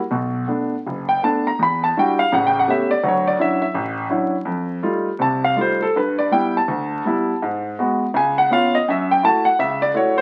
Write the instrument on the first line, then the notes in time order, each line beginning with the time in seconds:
grand piano
0.11 B1 B2
0.48 A3 B3 D4
0.87 F#1
1.09 G5
1.23 A3 B3 D4 A5
1.47 A#5
1.59 E2 B5
1.84 A5
1.97 G3 D4 E4 F#4 G5
2.19 F5
2.32 A1 C#3 F#5
2.47 G5
2.59 F#5
2.68 A3 B3 C#4 G4 E5
2.91 D5
3.03 D2 F#3
3.08 C#5
3.27 D5
3.39 F#3 C#4 D4 E4 E5
3.62 E5
3.74 A1
4.10 F#3 C#4 D4 E4
4.45 F2
4.83 G3 A3 D#4 F4
5.19 C2 C3 A5
5.44 F5
5.56 G3 A3 D#4 F4
5.61 C5
5.82 A4
5.96 G2 B4
6.19 D5
6.31 G3 B3 E4 G5
6.57 A5
6.68 D2
7.05 G3 B3 E4
7.42 G#2
7.79 G#3 B3 F#4
8.14 C#2 G#5
8.38 F#5
8.51 B3 C#4 F4 F5
8.75 D#5
8.88 F#2 E5
9.11 G5
9.23 A3 E4 F#4 A5
9.45 F#5
9.59 C#2 E5
9.82 D5
9.94 A3 E4 F#4 C#5
10.18 C5